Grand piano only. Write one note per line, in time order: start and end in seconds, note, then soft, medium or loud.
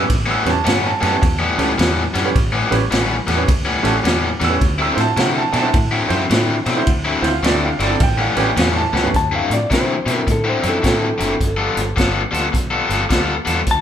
0.00 0.10 B4 medium
0.00 0.10 E6 loud
0.31 0.48 E6 medium
0.46 0.56 C#4 medium
0.46 0.56 G4 medium
0.46 0.56 B4 medium
0.50 0.67 A5 loud
0.68 0.85 F#5 medium
0.86 1.04 A5 loud
1.01 1.07 G4 soft
1.01 1.07 B4 soft
1.01 1.05 G#5 medium
1.05 2.14 A5 loud
1.12 1.22 C#4 medium
1.12 1.22 G4 medium
1.12 1.22 B4 medium
1.58 1.68 C#4 medium
1.58 1.69 G4 medium
1.58 1.69 A4 medium
2.15 2.20 G4 soft
2.15 2.20 A4 medium
2.25 2.35 C#4 medium
2.25 2.35 G4 medium
2.25 2.35 B4 medium
2.71 2.81 C#4 loud
2.71 2.81 G4 medium
2.71 2.81 B4 loud
3.27 3.33 G4 medium
3.27 3.33 A4 medium
3.37 3.48 C#4 medium
3.37 3.48 G4 medium
3.37 3.48 B4 medium
3.83 3.94 C#4 medium
3.83 3.94 G4 loud
3.83 3.94 A4 loud
4.40 4.46 G4 soft
4.40 4.46 B4 soft
4.40 4.62 E6 loud
4.50 4.61 C#4 medium
4.50 4.61 G4 medium
4.50 4.61 B4 medium
4.82 4.99 E6 medium
4.95 5.07 E4 medium
4.95 5.06 F#4 medium
4.95 5.07 C5 medium
5.00 5.18 A5 loud
5.19 5.37 F#5 medium
5.38 5.56 A5 loud
5.52 5.58 F#4 soft
5.52 5.58 D5 medium
5.52 5.57 G#5 medium
5.57 6.66 A5 loud
5.62 5.73 E4 medium
5.62 5.73 F#4 medium
5.62 5.73 C5 medium
6.09 6.20 E4 medium
6.09 6.20 F#4 medium
6.09 6.20 C5 medium
6.66 6.71 F#4 soft
6.66 6.71 C5 medium
6.76 6.87 E4 medium
6.76 6.87 F#4 medium
6.76 6.87 C5 loud
7.22 7.33 E4 medium
7.22 7.33 F#4 medium
7.22 7.33 C5 medium
7.27 7.44 F5 loud
7.46 7.63 D5 loud
7.66 7.82 F5 medium
7.79 7.85 F#4 soft
7.79 7.82 D5 medium
7.84 8.01 D5 medium
7.90 8.00 E4 medium
7.90 8.00 F#4 medium
7.90 8.00 A4 medium
8.03 8.20 G5 loud
8.21 8.38 F5 medium
8.37 8.47 C#4 medium
8.37 8.47 G4 medium
8.37 8.47 B4 medium
8.37 8.57 G5 loud
8.58 8.76 F5 medium
8.76 9.13 A5 loud
8.93 8.98 G4 soft
8.93 8.98 B4 medium
9.03 9.14 C#4 medium
9.03 9.14 G4 medium
9.03 9.14 B4 medium